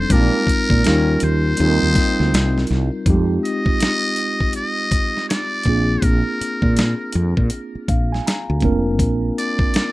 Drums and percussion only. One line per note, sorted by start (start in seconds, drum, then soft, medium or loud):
0.10 kick loud
0.10 closed hi-hat medium
0.47 kick medium
0.47 closed hi-hat medium
0.70 kick loud
0.84 snare loud
0.84 closed hi-hat medium
1.20 closed hi-hat medium
1.57 closed hi-hat medium
1.95 kick loud
1.95 snare soft
1.95 closed hi-hat medium
2.21 snare soft
2.34 snare loud
2.34 closed hi-hat medium
2.58 snare soft
2.67 closed hi-hat soft
2.72 snare soft
3.06 kick loud
3.06 closed hi-hat medium
3.45 closed hi-hat medium
3.66 kick medium
3.80 snare loud
3.80 closed hi-hat medium
4.16 closed hi-hat medium
4.41 kick medium
4.53 closed hi-hat medium
4.92 kick medium
4.92 closed hi-hat medium
5.17 snare soft
5.30 snare loud
5.30 closed hi-hat medium
5.63 kick medium
5.63 closed hi-hat soft
6.02 kick loud
6.02 closed hi-hat medium
6.41 closed hi-hat medium
6.62 kick medium
6.77 snare loud
6.77 closed hi-hat medium
7.12 closed hi-hat medium
7.37 kick medium
7.50 closed hi-hat medium
7.88 kick medium
7.88 closed hi-hat medium
8.14 snare soft
8.27 snare loud
8.27 closed hi-hat medium
8.60 kick medium
8.60 closed hi-hat soft
8.99 kick medium
8.99 closed hi-hat medium
9.38 closed hi-hat medium
9.59 kick medium
9.74 snare loud
9.74 closed hi-hat medium